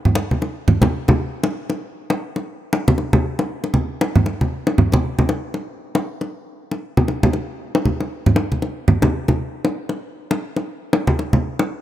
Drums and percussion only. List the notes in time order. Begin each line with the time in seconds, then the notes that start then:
0.05 low conga
0.15 high bongo
0.31 high conga
0.42 high bongo
0.68 low conga
0.82 high bongo, high conga
1.08 high bongo, high conga
1.43 high bongo
1.70 high bongo
2.10 high bongo
2.36 high bongo
2.73 high bongo
2.88 high conga
2.98 high bongo
3.13 high conga
3.39 high bongo
3.64 high bongo
3.74 high conga
4.01 high bongo
4.16 low conga
4.26 high bongo
4.41 high conga
4.67 high bongo
4.78 low conga
4.92 high bongo, high conga
5.19 high conga
5.29 high bongo
5.54 high bongo
5.95 high bongo
6.21 high bongo
6.71 high bongo
6.97 high conga
7.08 high bongo
7.23 high conga
7.33 high bongo
7.75 high bongo
7.85 high conga
8.00 high bongo
8.26 low conga
8.36 high bongo
8.52 high conga
8.62 high bongo
8.88 low conga
9.02 high bongo, high conga
9.28 high bongo, high conga
9.65 high bongo
9.89 high bongo
10.31 high bongo
10.56 high bongo
10.93 high bongo
11.07 high conga
11.19 high bongo
11.33 high conga
11.59 high bongo